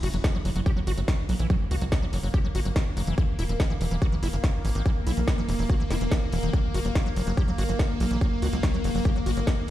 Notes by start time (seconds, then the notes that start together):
Already playing: A#3
0.03 F#1 F#4, open hi-hat
0.14 F#1 F#3, closed hi-hat
0.24 F#4, kick, snare, closed hi-hat
0.35 F#3
0.45 F#1 F#3, open hi-hat
0.56 F#1 F#3, closed hi-hat
0.66 G4, kick, closed hi-hat
0.77 F#3
0.87 G1 F#4, open hi-hat
0.98 G1 F#3, closed hi-hat
1.08 F#4, kick, snare, closed hi-hat
1.29 B1 F#3, open hi-hat
1.40 B1 E3, closed hi-hat
1.50 F#3, kick, closed hi-hat
1.71 C#2 F#4, open hi-hat
1.81 C#2 F#3, closed hi-hat
1.92 F#4, kick, snare, closed hi-hat
2.02 F#3
2.13 F#1 F#3, open hi-hat
2.23 F#1 F#3, open hi-hat
2.34 G4, kick, closed hi-hat
2.44 F#3
2.55 G1 F#4, open hi-hat
2.65 G1 F#3, closed hi-hat
2.76 F#4, kick, snare, closed hi-hat
2.97 F#1 F#3, open hi-hat
3.07 F#1 E3, closed hi-hat
3.18 E3, kick, closed hi-hat
3.39 E1 E4, open hi-hat
3.49 E1 E3, closed hi-hat
3.60 E4, kick, snare, closed hi-hat
3.70 E3
3.81 E1 E3, open hi-hat
3.91 E1 E3, closed hi-hat
4.02 F#4, kick, closed hi-hat
4.12 E3
4.23 F#1 E4, open hi-hat
4.33 F#1 E3, closed hi-hat
4.44 E4, kick, snare, closed hi-hat
4.65 G#1 E3, open hi-hat
4.75 G#1 D#3, closed hi-hat
4.86 E3, kick, closed hi-hat
5.07 B1 E4, open hi-hat
5.17 B1 E3, closed hi-hat
5.28 E4, kick, snare, closed hi-hat
5.38 E3
5.49 E1 E3, open hi-hat
5.59 E1 E3, open hi-hat
5.70 F#4, kick, closed hi-hat
5.80 E3
5.91 E1 E4, snare, open hi-hat
6.01 E1 E3, closed hi-hat
6.12 E4, kick, snare, closed hi-hat
6.33 E1 E3, open hi-hat
6.43 E1 D#3, closed hi-hat
6.53 F#3, kick, closed hi-hat
6.74 F#1 F#4, open hi-hat
6.85 F#1 F#3, closed hi-hat
6.95 F#4, kick, snare, closed hi-hat
7.06 F#3
7.16 F#1 F#3, open hi-hat
7.27 F#1 F#3, closed hi-hat
7.37 G4, kick, closed hi-hat
7.48 F#3
7.58 G1 F#4, open hi-hat
7.69 G1 F#3, closed hi-hat
7.79 F#4, kick, snare, closed hi-hat
8.00 B1 F#3, open hi-hat
8.11 B1 E3, closed hi-hat
8.21 F#3, kick, closed hi-hat
8.42 C#2 F#4, open hi-hat
8.53 C#2 F#3, closed hi-hat
8.63 F#4, kick, snare, closed hi-hat
8.74 F#3
8.84 F#1 F#3, open hi-hat
8.95 F#1 F#3, open hi-hat
9.05 G4, kick, closed hi-hat
9.16 F#3
9.26 G1 F#4, open hi-hat
9.37 G1 F#3, closed hi-hat
9.47 F#4, kick, snare, closed hi-hat